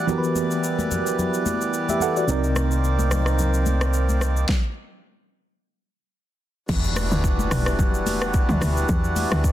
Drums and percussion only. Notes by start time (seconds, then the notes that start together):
0.08 low conga, shaker
0.24 shaker
0.35 high conga, shaker
0.51 shaker
0.64 shaker
0.79 high conga, shaker
0.91 high conga, low conga, shaker
1.07 shaker
1.19 low conga, shaker
1.34 shaker
1.46 high conga, shaker
1.61 shaker
1.74 shaker
1.89 high conga, shaker
2.00 high conga, shaker
2.17 shaker
2.29 low conga, shaker
2.44 shaker
2.56 cross-stick, high conga, shaker
2.71 shaker
2.84 shaker
2.99 high conga, shaker
3.11 cross-stick, high conga, low conga, shaker
3.26 cross-stick, shaker
3.39 low conga, shaker
3.54 shaker
3.66 high conga, shaker
3.81 cross-stick, shaker
3.94 shaker
4.09 high conga, shaker
4.21 cross-stick, high conga, shaker
4.37 shaker
4.49 kick, snare
6.69 kick, crash, low conga, shaker
6.84 shaker
6.96 cross-stick, open hi-hat, high conga, shaker
7.11 shaker
7.24 kick, shaker
7.39 high conga, shaker
7.51 cross-stick, open hi-hat, high conga, low conga, shaker
7.66 cross-stick, shaker
7.79 kick, low conga, shaker
7.94 shaker
8.06 open hi-hat, high conga, shaker
8.22 cross-stick, shaker
8.34 kick, shaker
8.49 mid tom, high conga, shaker
8.61 cross-stick, open hi-hat, high conga, shaker
8.77 shaker
8.89 kick, low conga, shaker
9.04 shaker
9.16 open hi-hat, high conga, shaker
9.31 cross-stick, shaker
9.44 kick, shaker